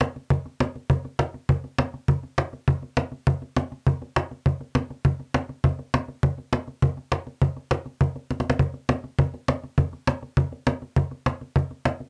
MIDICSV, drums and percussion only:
0, 0, Header, 1, 2, 480
1, 0, Start_track
1, 0, Tempo, 296150
1, 486, Time_signature, 4, 2, 24, 8
1, 19602, End_track
2, 0, Start_track
2, 0, Title_t, "Cajon"
2, 11, Note_on_c, 9, 38, 120
2, 173, Note_off_c, 9, 38, 0
2, 261, Note_on_c, 9, 38, 34
2, 423, Note_off_c, 9, 38, 0
2, 492, Note_on_c, 9, 36, 120
2, 654, Note_off_c, 9, 36, 0
2, 740, Note_on_c, 9, 38, 37
2, 902, Note_off_c, 9, 38, 0
2, 979, Note_on_c, 9, 38, 124
2, 1141, Note_off_c, 9, 38, 0
2, 1224, Note_on_c, 9, 38, 42
2, 1386, Note_off_c, 9, 38, 0
2, 1454, Note_on_c, 9, 36, 119
2, 1616, Note_off_c, 9, 36, 0
2, 1698, Note_on_c, 9, 38, 41
2, 1860, Note_off_c, 9, 38, 0
2, 1930, Note_on_c, 9, 38, 115
2, 2092, Note_off_c, 9, 38, 0
2, 2175, Note_on_c, 9, 38, 36
2, 2338, Note_off_c, 9, 38, 0
2, 2416, Note_on_c, 9, 36, 121
2, 2578, Note_off_c, 9, 36, 0
2, 2659, Note_on_c, 9, 38, 36
2, 2821, Note_off_c, 9, 38, 0
2, 2892, Note_on_c, 9, 38, 120
2, 3055, Note_off_c, 9, 38, 0
2, 3142, Note_on_c, 9, 38, 37
2, 3304, Note_off_c, 9, 38, 0
2, 3376, Note_on_c, 9, 36, 121
2, 3538, Note_off_c, 9, 36, 0
2, 3619, Note_on_c, 9, 38, 34
2, 3781, Note_off_c, 9, 38, 0
2, 3857, Note_on_c, 9, 38, 115
2, 4019, Note_off_c, 9, 38, 0
2, 4101, Note_on_c, 9, 38, 32
2, 4263, Note_off_c, 9, 38, 0
2, 4338, Note_on_c, 9, 36, 120
2, 4500, Note_off_c, 9, 36, 0
2, 4579, Note_on_c, 9, 38, 39
2, 4741, Note_off_c, 9, 38, 0
2, 4812, Note_on_c, 9, 38, 118
2, 4974, Note_off_c, 9, 38, 0
2, 5052, Note_on_c, 9, 38, 39
2, 5214, Note_off_c, 9, 38, 0
2, 5298, Note_on_c, 9, 36, 120
2, 5460, Note_off_c, 9, 36, 0
2, 5542, Note_on_c, 9, 38, 38
2, 5704, Note_off_c, 9, 38, 0
2, 5778, Note_on_c, 9, 38, 119
2, 5940, Note_off_c, 9, 38, 0
2, 6027, Note_on_c, 9, 38, 39
2, 6189, Note_off_c, 9, 38, 0
2, 6265, Note_on_c, 9, 36, 115
2, 6427, Note_off_c, 9, 36, 0
2, 6512, Note_on_c, 9, 38, 41
2, 6674, Note_off_c, 9, 38, 0
2, 6747, Note_on_c, 9, 38, 123
2, 6909, Note_off_c, 9, 38, 0
2, 6991, Note_on_c, 9, 38, 37
2, 7153, Note_off_c, 9, 38, 0
2, 7226, Note_on_c, 9, 36, 111
2, 7388, Note_off_c, 9, 36, 0
2, 7466, Note_on_c, 9, 38, 36
2, 7628, Note_off_c, 9, 38, 0
2, 7699, Note_on_c, 9, 38, 121
2, 7861, Note_off_c, 9, 38, 0
2, 7949, Note_on_c, 9, 38, 35
2, 8111, Note_off_c, 9, 38, 0
2, 8182, Note_on_c, 9, 36, 122
2, 8344, Note_off_c, 9, 36, 0
2, 8422, Note_on_c, 9, 38, 38
2, 8584, Note_off_c, 9, 38, 0
2, 8661, Note_on_c, 9, 38, 120
2, 8823, Note_off_c, 9, 38, 0
2, 8901, Note_on_c, 9, 38, 39
2, 9063, Note_off_c, 9, 38, 0
2, 9141, Note_on_c, 9, 36, 127
2, 9303, Note_off_c, 9, 36, 0
2, 9382, Note_on_c, 9, 38, 39
2, 9544, Note_off_c, 9, 38, 0
2, 9626, Note_on_c, 9, 38, 124
2, 9788, Note_off_c, 9, 38, 0
2, 9860, Note_on_c, 9, 38, 37
2, 10022, Note_off_c, 9, 38, 0
2, 10099, Note_on_c, 9, 36, 118
2, 10261, Note_off_c, 9, 36, 0
2, 10341, Note_on_c, 9, 38, 41
2, 10503, Note_off_c, 9, 38, 0
2, 10578, Note_on_c, 9, 38, 117
2, 10740, Note_off_c, 9, 38, 0
2, 10820, Note_on_c, 9, 38, 39
2, 10982, Note_off_c, 9, 38, 0
2, 11060, Note_on_c, 9, 36, 122
2, 11222, Note_off_c, 9, 36, 0
2, 11301, Note_on_c, 9, 38, 36
2, 11463, Note_off_c, 9, 38, 0
2, 11536, Note_on_c, 9, 38, 116
2, 11698, Note_off_c, 9, 38, 0
2, 11779, Note_on_c, 9, 38, 35
2, 11941, Note_off_c, 9, 38, 0
2, 12020, Note_on_c, 9, 36, 118
2, 12182, Note_off_c, 9, 36, 0
2, 12261, Note_on_c, 9, 38, 36
2, 12423, Note_off_c, 9, 38, 0
2, 12496, Note_on_c, 9, 38, 123
2, 12658, Note_off_c, 9, 38, 0
2, 12735, Note_on_c, 9, 38, 36
2, 12897, Note_off_c, 9, 38, 0
2, 12978, Note_on_c, 9, 36, 119
2, 13140, Note_off_c, 9, 36, 0
2, 13220, Note_on_c, 9, 38, 40
2, 13382, Note_off_c, 9, 38, 0
2, 13462, Note_on_c, 9, 38, 74
2, 13615, Note_off_c, 9, 38, 0
2, 13615, Note_on_c, 9, 38, 76
2, 13692, Note_off_c, 9, 38, 0
2, 13692, Note_on_c, 9, 38, 39
2, 13771, Note_off_c, 9, 38, 0
2, 13771, Note_on_c, 9, 38, 113
2, 13929, Note_on_c, 9, 36, 116
2, 13933, Note_off_c, 9, 38, 0
2, 14091, Note_off_c, 9, 36, 0
2, 14161, Note_on_c, 9, 38, 37
2, 14323, Note_off_c, 9, 38, 0
2, 14408, Note_on_c, 9, 38, 118
2, 14570, Note_off_c, 9, 38, 0
2, 14651, Note_on_c, 9, 38, 40
2, 14813, Note_off_c, 9, 38, 0
2, 14888, Note_on_c, 9, 36, 124
2, 15050, Note_off_c, 9, 36, 0
2, 15136, Note_on_c, 9, 38, 38
2, 15298, Note_off_c, 9, 38, 0
2, 15371, Note_on_c, 9, 38, 121
2, 15533, Note_off_c, 9, 38, 0
2, 15618, Note_on_c, 9, 38, 34
2, 15780, Note_off_c, 9, 38, 0
2, 15847, Note_on_c, 9, 36, 114
2, 15851, Note_on_c, 9, 38, 33
2, 16009, Note_off_c, 9, 36, 0
2, 16013, Note_off_c, 9, 38, 0
2, 16093, Note_on_c, 9, 38, 35
2, 16255, Note_off_c, 9, 38, 0
2, 16328, Note_on_c, 9, 38, 125
2, 16490, Note_off_c, 9, 38, 0
2, 16573, Note_on_c, 9, 38, 38
2, 16735, Note_off_c, 9, 38, 0
2, 16808, Note_on_c, 9, 36, 127
2, 16970, Note_off_c, 9, 36, 0
2, 17054, Note_on_c, 9, 38, 41
2, 17216, Note_off_c, 9, 38, 0
2, 17290, Note_on_c, 9, 38, 121
2, 17452, Note_off_c, 9, 38, 0
2, 17537, Note_on_c, 9, 38, 38
2, 17699, Note_off_c, 9, 38, 0
2, 17771, Note_on_c, 9, 36, 126
2, 17933, Note_off_c, 9, 36, 0
2, 18012, Note_on_c, 9, 38, 39
2, 18174, Note_off_c, 9, 38, 0
2, 18253, Note_on_c, 9, 38, 117
2, 18415, Note_off_c, 9, 38, 0
2, 18498, Note_on_c, 9, 38, 40
2, 18660, Note_off_c, 9, 38, 0
2, 18732, Note_on_c, 9, 36, 125
2, 18894, Note_off_c, 9, 36, 0
2, 18976, Note_on_c, 9, 38, 37
2, 19138, Note_off_c, 9, 38, 0
2, 19213, Note_on_c, 9, 38, 117
2, 19375, Note_off_c, 9, 38, 0
2, 19455, Note_on_c, 9, 38, 36
2, 19602, Note_off_c, 9, 38, 0
2, 19602, End_track
0, 0, End_of_file